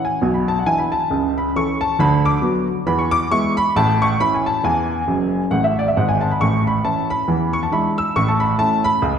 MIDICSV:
0, 0, Header, 1, 2, 480
1, 0, Start_track
1, 0, Key_signature, 3, "major"
1, 0, Tempo, 440205
1, 1193, Time_signature, 4, 2, 24, 8
1, 10018, End_track
2, 0, Start_track
2, 0, Title_t, "Upright piano"
2, 0, Program_c, 0, 0
2, 51, Note_on_c, 0, 80, 62
2, 235, Note_on_c, 0, 47, 70
2, 243, Note_on_c, 0, 35, 60
2, 333, Note_off_c, 0, 80, 0
2, 369, Note_on_c, 0, 83, 51
2, 512, Note_off_c, 0, 83, 0
2, 526, Note_on_c, 0, 81, 75
2, 620, Note_off_c, 0, 81, 0
2, 642, Note_off_c, 0, 47, 0
2, 643, Note_on_c, 0, 78, 58
2, 647, Note_off_c, 0, 35, 0
2, 722, Note_on_c, 0, 52, 42
2, 723, Note_on_c, 0, 62, 38
2, 725, Note_on_c, 0, 80, 85
2, 728, Note_off_c, 0, 78, 0
2, 731, Note_on_c, 0, 64, 44
2, 855, Note_on_c, 0, 83, 61
2, 859, Note_off_c, 0, 80, 0
2, 984, Note_off_c, 0, 52, 0
2, 984, Note_off_c, 0, 62, 0
2, 990, Note_off_c, 0, 64, 0
2, 994, Note_off_c, 0, 83, 0
2, 1001, Note_on_c, 0, 81, 76
2, 1206, Note_on_c, 0, 37, 56
2, 1206, Note_on_c, 0, 49, 66
2, 1406, Note_off_c, 0, 81, 0
2, 1500, Note_on_c, 0, 83, 72
2, 1608, Note_off_c, 0, 37, 0
2, 1608, Note_off_c, 0, 49, 0
2, 1658, Note_off_c, 0, 83, 0
2, 1697, Note_on_c, 0, 61, 34
2, 1698, Note_on_c, 0, 52, 39
2, 1702, Note_on_c, 0, 69, 52
2, 1706, Note_on_c, 0, 85, 86
2, 1930, Note_off_c, 0, 85, 0
2, 1954, Note_off_c, 0, 61, 0
2, 1955, Note_off_c, 0, 52, 0
2, 1958, Note_off_c, 0, 69, 0
2, 1971, Note_on_c, 0, 81, 88
2, 2133, Note_off_c, 0, 81, 0
2, 2171, Note_on_c, 0, 38, 72
2, 2180, Note_on_c, 0, 83, 92
2, 2181, Note_on_c, 0, 50, 81
2, 2407, Note_off_c, 0, 83, 0
2, 2459, Note_on_c, 0, 86, 90
2, 2571, Note_off_c, 0, 38, 0
2, 2577, Note_off_c, 0, 50, 0
2, 2637, Note_on_c, 0, 54, 49
2, 2640, Note_on_c, 0, 59, 50
2, 2650, Note_on_c, 0, 66, 48
2, 2856, Note_off_c, 0, 86, 0
2, 2900, Note_off_c, 0, 54, 0
2, 2902, Note_off_c, 0, 59, 0
2, 2909, Note_off_c, 0, 66, 0
2, 3124, Note_on_c, 0, 52, 73
2, 3125, Note_on_c, 0, 40, 70
2, 3127, Note_on_c, 0, 83, 86
2, 3256, Note_on_c, 0, 85, 71
2, 3260, Note_off_c, 0, 83, 0
2, 3394, Note_off_c, 0, 85, 0
2, 3395, Note_on_c, 0, 86, 106
2, 3527, Note_off_c, 0, 40, 0
2, 3527, Note_off_c, 0, 52, 0
2, 3563, Note_off_c, 0, 86, 0
2, 3610, Note_on_c, 0, 56, 47
2, 3614, Note_on_c, 0, 85, 103
2, 3616, Note_on_c, 0, 59, 47
2, 3616, Note_on_c, 0, 64, 52
2, 3843, Note_off_c, 0, 85, 0
2, 3869, Note_off_c, 0, 56, 0
2, 3873, Note_off_c, 0, 59, 0
2, 3873, Note_off_c, 0, 64, 0
2, 3893, Note_on_c, 0, 83, 101
2, 4054, Note_off_c, 0, 83, 0
2, 4099, Note_on_c, 0, 33, 66
2, 4102, Note_on_c, 0, 45, 82
2, 4105, Note_on_c, 0, 81, 104
2, 4330, Note_off_c, 0, 81, 0
2, 4382, Note_on_c, 0, 85, 96
2, 4496, Note_off_c, 0, 33, 0
2, 4497, Note_off_c, 0, 45, 0
2, 4538, Note_off_c, 0, 85, 0
2, 4579, Note_on_c, 0, 52, 41
2, 4584, Note_on_c, 0, 61, 46
2, 4585, Note_on_c, 0, 83, 101
2, 4592, Note_on_c, 0, 64, 47
2, 4708, Note_off_c, 0, 83, 0
2, 4737, Note_on_c, 0, 80, 59
2, 4836, Note_off_c, 0, 52, 0
2, 4839, Note_off_c, 0, 61, 0
2, 4845, Note_off_c, 0, 64, 0
2, 4855, Note_off_c, 0, 80, 0
2, 4867, Note_on_c, 0, 81, 85
2, 5022, Note_off_c, 0, 81, 0
2, 5056, Note_on_c, 0, 52, 63
2, 5063, Note_on_c, 0, 40, 71
2, 5065, Note_on_c, 0, 80, 78
2, 5454, Note_off_c, 0, 52, 0
2, 5457, Note_off_c, 0, 40, 0
2, 5535, Note_on_c, 0, 30, 57
2, 5537, Note_on_c, 0, 42, 61
2, 5867, Note_off_c, 0, 80, 0
2, 5886, Note_off_c, 0, 30, 0
2, 5887, Note_off_c, 0, 42, 0
2, 6003, Note_on_c, 0, 45, 55
2, 6008, Note_on_c, 0, 78, 81
2, 6013, Note_on_c, 0, 33, 62
2, 6140, Note_off_c, 0, 78, 0
2, 6151, Note_on_c, 0, 76, 69
2, 6282, Note_off_c, 0, 76, 0
2, 6311, Note_on_c, 0, 74, 69
2, 6359, Note_off_c, 0, 45, 0
2, 6365, Note_off_c, 0, 33, 0
2, 6391, Note_off_c, 0, 74, 0
2, 6413, Note_on_c, 0, 76, 62
2, 6492, Note_off_c, 0, 76, 0
2, 6504, Note_on_c, 0, 32, 51
2, 6509, Note_on_c, 0, 44, 58
2, 6509, Note_on_c, 0, 78, 69
2, 6631, Note_off_c, 0, 78, 0
2, 6636, Note_on_c, 0, 80, 63
2, 6764, Note_off_c, 0, 80, 0
2, 6771, Note_on_c, 0, 81, 68
2, 6852, Note_off_c, 0, 32, 0
2, 6855, Note_off_c, 0, 44, 0
2, 6861, Note_off_c, 0, 81, 0
2, 6884, Note_on_c, 0, 83, 66
2, 6968, Note_off_c, 0, 83, 0
2, 6979, Note_on_c, 0, 45, 59
2, 6988, Note_on_c, 0, 85, 89
2, 6993, Note_on_c, 0, 33, 55
2, 7211, Note_off_c, 0, 85, 0
2, 7275, Note_on_c, 0, 83, 76
2, 7375, Note_off_c, 0, 45, 0
2, 7384, Note_off_c, 0, 33, 0
2, 7427, Note_off_c, 0, 83, 0
2, 7464, Note_on_c, 0, 61, 38
2, 7465, Note_on_c, 0, 52, 37
2, 7465, Note_on_c, 0, 81, 80
2, 7466, Note_on_c, 0, 64, 37
2, 7690, Note_off_c, 0, 81, 0
2, 7719, Note_off_c, 0, 61, 0
2, 7720, Note_off_c, 0, 52, 0
2, 7721, Note_off_c, 0, 64, 0
2, 7745, Note_on_c, 0, 83, 89
2, 7935, Note_on_c, 0, 40, 67
2, 7937, Note_on_c, 0, 52, 62
2, 8140, Note_off_c, 0, 83, 0
2, 8214, Note_on_c, 0, 85, 81
2, 8304, Note_off_c, 0, 85, 0
2, 8318, Note_on_c, 0, 81, 65
2, 8334, Note_off_c, 0, 40, 0
2, 8335, Note_off_c, 0, 52, 0
2, 8405, Note_off_c, 0, 81, 0
2, 8412, Note_on_c, 0, 56, 40
2, 8414, Note_on_c, 0, 62, 40
2, 8423, Note_on_c, 0, 64, 46
2, 8423, Note_on_c, 0, 83, 84
2, 8649, Note_off_c, 0, 83, 0
2, 8671, Note_off_c, 0, 56, 0
2, 8673, Note_off_c, 0, 62, 0
2, 8679, Note_off_c, 0, 64, 0
2, 8702, Note_on_c, 0, 88, 85
2, 8859, Note_off_c, 0, 88, 0
2, 8897, Note_on_c, 0, 85, 93
2, 8898, Note_on_c, 0, 33, 57
2, 8899, Note_on_c, 0, 45, 66
2, 9026, Note_off_c, 0, 85, 0
2, 9033, Note_on_c, 0, 81, 68
2, 9158, Note_on_c, 0, 83, 86
2, 9164, Note_off_c, 0, 81, 0
2, 9296, Note_off_c, 0, 33, 0
2, 9297, Note_off_c, 0, 45, 0
2, 9326, Note_off_c, 0, 83, 0
2, 9358, Note_on_c, 0, 57, 47
2, 9365, Note_on_c, 0, 81, 92
2, 9370, Note_on_c, 0, 61, 47
2, 9372, Note_on_c, 0, 64, 47
2, 9599, Note_off_c, 0, 81, 0
2, 9621, Note_off_c, 0, 57, 0
2, 9630, Note_off_c, 0, 61, 0
2, 9631, Note_off_c, 0, 64, 0
2, 9643, Note_on_c, 0, 83, 102
2, 9834, Note_on_c, 0, 49, 83
2, 9837, Note_on_c, 0, 37, 78
2, 10018, Note_off_c, 0, 37, 0
2, 10018, Note_off_c, 0, 49, 0
2, 10018, Note_off_c, 0, 83, 0
2, 10018, End_track
0, 0, End_of_file